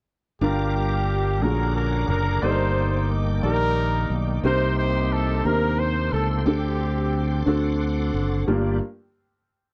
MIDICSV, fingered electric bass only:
0, 0, Header, 1, 2, 480
1, 0, Start_track
1, 0, Key_signature, -2, "minor"
1, 0, Tempo, 671892
1, 297, Time_signature, 6, 3, 24, 8
1, 6954, End_track
2, 0, Start_track
2, 0, Title_t, "Fingered electric bass"
2, 0, Program_c, 0, 33
2, 295, Note_on_c, 0, 31, 73
2, 1014, Note_off_c, 0, 31, 0
2, 1014, Note_on_c, 0, 34, 81
2, 1466, Note_off_c, 0, 34, 0
2, 1489, Note_on_c, 0, 30, 73
2, 1713, Note_off_c, 0, 30, 0
2, 1733, Note_on_c, 0, 31, 79
2, 2425, Note_off_c, 0, 31, 0
2, 2453, Note_on_c, 0, 34, 74
2, 2906, Note_off_c, 0, 34, 0
2, 2929, Note_on_c, 0, 35, 66
2, 3153, Note_off_c, 0, 35, 0
2, 3168, Note_on_c, 0, 36, 77
2, 3864, Note_off_c, 0, 36, 0
2, 3894, Note_on_c, 0, 39, 72
2, 4347, Note_off_c, 0, 39, 0
2, 4377, Note_on_c, 0, 37, 64
2, 4597, Note_off_c, 0, 37, 0
2, 4613, Note_on_c, 0, 38, 73
2, 5306, Note_off_c, 0, 38, 0
2, 5334, Note_on_c, 0, 38, 83
2, 5787, Note_off_c, 0, 38, 0
2, 5816, Note_on_c, 0, 30, 77
2, 6037, Note_off_c, 0, 30, 0
2, 6058, Note_on_c, 0, 31, 77
2, 6281, Note_off_c, 0, 31, 0
2, 6954, End_track
0, 0, End_of_file